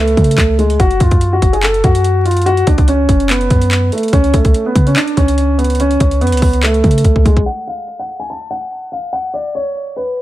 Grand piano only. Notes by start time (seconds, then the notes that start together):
Already playing: A3
0.59 G#3
0.79 F#4
1.01 F4
1.33 F#4
1.53 G#4
1.63 A4
1.84 F#4
2.25 F4
2.46 F#4
2.67 D4
2.88 C#4
3.30 B3
3.93 A3
4.13 C#4
4.34 A3
4.66 B3
4.87 C#4
4.97 D4
5.17 C#4
5.58 B3
5.80 C#4
6.00 C#4
6.21 B3
6.64 A3
7.25 G#3
7.46 F#5
7.67 F5
7.99 F#5
8.20 G#5
8.30 A5
8.51 F#5
8.92 F5
9.13 F#5
9.34 D5
9.55 C#5
9.96 B4